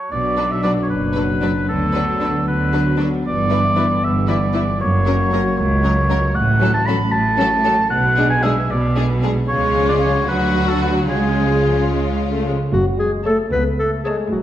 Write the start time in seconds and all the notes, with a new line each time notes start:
0.11 B1 B2 F#3 D4 D5
0.37 F#3 D4 B4
0.51 E5
0.63 F#3 D4 B4 D5
0.83 C#5
0.89 F#1 F#2 B4
1.14 F#3 D4 B4
1.42 F#3 D4 B4
1.68 D2 D3 B3 A4
1.95 F#3 D4 B4
2.20 F#3 D4 B4
2.47 D2 D3 B4
2.73 F#3 D4 B4
2.98 F#3 D4 B4
3.25 G1 G2 E3 D5
3.50 E3 E4 B4
3.76 E3 E4 B4
4.02 G1 G2 E5
4.27 E3 E4 B4 D5
4.52 E3 E4 B4
4.79 F#1 F#2 F#3 A#3 C#5
5.06 F#3 C#4 A#4
5.32 F#3 C#4 A#4
5.57 C#2 C#5
5.83 F#3 C#4 A#4
6.09 F#3 C#4 A#4
6.35 A1 A2 F#5
6.60 F#3 C#4 A4
6.74 A5
6.86 F#3 C#4 A4 B5
7.12 A1 A2 A5
7.38 F#3 C#4 A4
7.64 F#3 C#4 A4
7.90 B1 B2 F#5
8.16 G#3 D4 G#4
8.30 G#5
8.43 G#3 D4 G#4 E5
8.69 B1 B2 D5
8.96 G#3 D4 G#4
9.22 G#3 D4 G#4
9.48 C#2 C#3 G#3 C#4 F4 C#5
9.76 F3 C#4
9.89 D5
10.02 F3 C#4 C#5
10.28 D2 D3 F#3 F#4 B4
10.56 F#3 D4
10.69 A4
10.82 F#3 D4 B4
11.09 C#2 C#3 G#3 C#4 F4 G#4
11.38 F3 C#4
11.66 F3 C#4
11.92 G#3
12.18 F3 C#4
12.33 A3
12.45 F3 G#3 C#4
12.73 F#1 F#2 F#3 F#4
12.99 G#3 G#4
13.25 A3 A4 C#5 A5
13.51 C#2 B3 B4
13.79 A3 A4
14.04 G#3 A3 G#4 C#5 A5
14.31 A1 A2 F#3 F#4